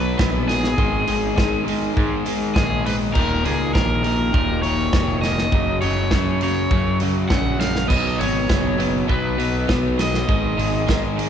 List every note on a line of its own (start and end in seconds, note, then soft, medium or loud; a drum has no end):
0.00 0.15 B1 loud
0.00 0.18 B2 medium
0.00 0.19 F#3 medium
0.00 0.18 B3 medium
0.00 3.12 B3 medium
0.00 3.13 D#4 medium
0.00 0.73 F#4 medium
0.00 0.44 B4 medium
0.00 0.76 D#5 medium
0.19 0.74 A#1 medium
0.19 0.48 B2 medium
0.19 0.49 F#3 medium
0.19 0.49 B3 loud
0.19 kick loud
0.19 snare loud
0.48 0.76 B2 medium
0.48 0.77 F#3 medium
0.48 0.77 B3 medium
0.48 1.63 G#4 medium
0.48 snare medium
0.48 open hi-hat medium
0.64 snare medium
0.77 1.05 G#1 medium
0.77 1.05 G#2 loud
0.77 1.06 D#3 medium
0.77 1.06 G#3 loud
0.77 3.13 G#4 medium
0.77 5.49 D#5 medium
0.77 kick loud
1.06 1.36 G#1 loud
1.06 1.34 G#2 medium
1.06 1.34 D#3 medium
1.06 1.35 G#3 medium
1.06 open hi-hat medium
1.35 1.64 G#2 medium
1.35 1.93 G#2 medium
1.35 1.64 D#3 medium
1.35 1.65 G#3 medium
1.35 kick loud
1.35 snare loud
1.65 1.93 G#2 medium
1.65 1.93 D#3 medium
1.65 1.94 G#3 medium
1.65 open hi-hat medium
1.94 2.24 G#2 medium
1.94 2.52 G#2 medium
1.94 2.24 D#3 medium
1.94 2.24 G#3 medium
1.94 kick loud
1.99 2.26 D#3 medium
1.99 2.27 G#3 loud
2.25 2.54 G#2 medium
2.25 2.54 D#3 medium
2.25 2.55 G#3 medium
2.25 open hi-hat medium
2.55 3.11 A#1 medium
2.55 2.83 G#2 medium
2.55 2.83 D#3 medium
2.55 2.84 G#3 medium
2.55 2.83 G#4 medium
2.55 kick loud
2.55 snare loud
2.84 3.12 G#2 medium
2.84 3.12 D#3 medium
2.84 3.14 G#3 medium
2.84 2.94 B4 medium
2.84 open hi-hat medium
3.12 3.43 D#1 loud
3.12 3.43 D#2 medium
3.12 3.43 A#2 medium
3.12 3.43 D#3 medium
3.12 5.50 A#3 medium
3.12 5.51 F4 medium
3.12 10.25 F#4 medium
3.12 3.45 A#4 medium
3.12 kick loud
3.12 crash loud
3.16 3.44 D#2 medium
3.16 3.44 A#2 medium
3.44 3.73 C#2 medium
3.44 3.72 D#2 medium
3.44 3.73 A#2 medium
3.44 3.73 D#3 medium
3.44 3.73 G#4 medium
3.44 open hi-hat medium
3.73 4.30 A#1 loud
3.73 4.02 D#2 medium
3.73 4.02 A#2 medium
3.73 4.02 D#3 medium
3.73 4.03 A#4 medium
3.73 kick loud
3.73 snare loud
4.03 4.31 D#2 medium
4.03 4.32 A#2 medium
4.03 4.32 D#3 medium
4.03 4.32 A#4 medium
4.03 open hi-hat medium
4.33 4.90 D#1 medium
4.33 4.62 D#2 medium
4.33 4.62 A#2 loud
4.33 4.63 D#3 medium
4.33 4.62 A#4 medium
4.33 kick loud
4.63 4.92 D#2 medium
4.63 4.92 A#2 medium
4.63 4.93 D#3 loud
4.63 5.19 C#5 loud
4.63 open hi-hat medium
4.93 5.49 F1 medium
4.93 5.22 D#2 medium
4.93 5.23 A#2 medium
4.93 5.23 D#3 medium
4.93 kick loud
4.93 snare loud
5.22 5.52 D#2 medium
5.22 5.52 A#2 loud
5.22 5.52 D#3 medium
5.22 5.78 D#5 loud
5.22 snare medium
5.22 open hi-hat medium
5.38 snare medium
5.51 5.81 F#1 medium
5.51 5.82 F#2 loud
5.51 5.83 C#3 medium
5.51 5.84 F#3 loud
5.51 7.88 A#3 medium
5.51 7.88 C#4 medium
5.51 7.88 C#5 medium
5.51 kick loud
5.81 6.11 F#1 loud
5.81 6.12 F#2 medium
5.81 6.13 C#3 medium
5.81 6.14 F#3 medium
5.81 6.42 C#5 loud
5.81 open hi-hat medium
6.11 6.68 F#2 loud
6.11 6.42 F#2 medium
6.11 6.43 C#3 medium
6.11 6.43 F#3 loud
6.11 kick loud
6.11 snare loud
6.41 6.71 F#2 medium
6.41 6.71 C#3 medium
6.41 6.72 F#3 medium
6.41 6.98 C#5 loud
6.41 open hi-hat medium
6.71 7.27 F#2 medium
6.71 7.01 F#2 medium
6.71 7.01 C#3 medium
6.71 7.02 F#3 loud
6.71 kick loud
7.00 7.30 F#2 medium
7.00 7.30 C#3 medium
7.00 7.30 F#3 loud
7.00 open hi-hat medium
7.29 7.86 A#1 medium
7.29 7.58 F#2 medium
7.29 7.58 C#3 loud
7.29 7.58 F#3 medium
7.29 7.60 F#5 loud
7.29 kick loud
7.29 snare loud
7.59 7.88 F#2 medium
7.59 7.88 C#3 loud
7.59 7.88 F#3 medium
7.59 7.88 F5 loud
7.59 snare medium
7.59 open hi-hat medium
7.75 snare medium
7.88 8.18 B1 loud
7.88 8.17 B2 loud
7.88 8.18 F#3 loud
7.88 10.25 B3 medium
7.88 8.19 B3 loud
7.88 11.29 D#4 medium
7.88 8.20 D#5 loud
7.88 10.26 D#5 medium
7.88 kick loud
7.88 crash loud
8.18 8.48 G#1 medium
8.18 8.48 B2 medium
8.18 8.48 F#3 medium
8.18 8.49 B3 medium
8.18 9.05 C#5 loud
8.18 open hi-hat medium
8.49 9.06 F#1 loud
8.49 8.76 B2 loud
8.49 8.77 F#3 medium
8.49 8.77 B3 medium
8.49 kick loud
8.49 snare loud
8.77 9.06 B2 medium
8.77 9.07 F#3 medium
8.77 9.07 B3 loud
8.77 open hi-hat medium
9.07 9.65 B1 loud
9.07 9.36 B2 medium
9.07 9.36 F#3 loud
9.07 9.37 B3 loud
9.07 10.02 B4 medium
9.07 kick loud
9.37 9.66 B2 medium
9.37 9.67 F#3 medium
9.37 9.68 B3 medium
9.37 open hi-hat medium
9.68 10.25 B1 medium
9.68 9.98 B2 medium
9.68 9.98 F#3 loud
9.68 9.98 B3 loud
9.68 kick loud
9.68 snare loud
9.99 10.27 B2 medium
9.99 10.27 F#3 loud
9.99 10.27 B3 loud
9.99 11.15 D#5 loud
9.99 snare medium
9.99 open hi-hat medium
10.14 snare medium
10.28 10.56 G#1 medium
10.28 10.56 G#2 loud
10.28 10.57 D#3 loud
10.28 10.57 G#3 loud
10.28 11.29 B3 medium
10.28 11.29 G#4 medium
10.28 11.29 D#5 medium
10.28 kick loud
10.57 10.86 G#1 loud
10.57 10.86 G#2 medium
10.57 10.87 D#3 medium
10.57 10.88 G#3 medium
10.57 open hi-hat medium
10.87 11.18 G#2 medium
10.87 11.29 G#2 loud
10.87 11.18 D#3 loud
10.87 11.18 G#3 medium
10.87 kick loud
10.87 snare loud
11.19 11.29 G#2 medium
11.19 11.29 D#3 medium
11.19 11.29 G#3 medium
11.19 open hi-hat medium